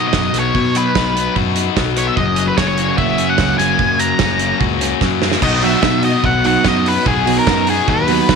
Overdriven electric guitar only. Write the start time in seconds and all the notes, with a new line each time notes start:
Already playing: F#3 B3 D#4 F#4
0.15 F#3
0.35 B3
0.57 B2
0.76 F#3
0.96 D#4
1.15 B3
1.36 F#4
1.56 D#4
1.78 F#3
1.99 B3
2.19 F#2
2.40 F#3
2.60 C#4
2.78 A#3
2.98 F#4
3.18 C#4
3.38 F#3
3.59 A#3
3.78 F#2
3.99 F#3
4.19 C#4
4.40 A#3
4.60 F#4
4.81 C#4
5.01 F#3
5.22 A#3
5.42 B2 F#3 B3 D#4 F#4
5.64 B3 D#4 F#4
5.82 F#3 B3 D#4 F#4
6.04 B3 D#4 F#4
6.45 B3 D#4 F#4
6.64 B2 F#3 B3 D#4 F#4
7.05 B2 F#3 B3 D#4 F#4
7.26 B3 D#4 F#4
7.46 F#3 B3 D#4 F#4
7.68 B3 D#4 F#4
8.08 B3 D#4 F#4
8.29 B2 F#3 B3 D#4 F#4